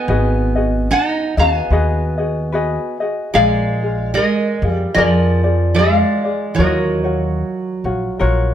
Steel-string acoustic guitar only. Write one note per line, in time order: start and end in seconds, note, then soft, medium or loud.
0.00 0.86 B3 medium
0.91 1.34 D#4 medium
1.38 2.96 B3 medium
3.34 4.11 G#3 medium
4.14 4.67 G#3 medium
4.67 4.91 G3 medium
4.95 5.72 F3 medium
5.74 6.53 G#3 medium
6.55 8.54 F#3 medium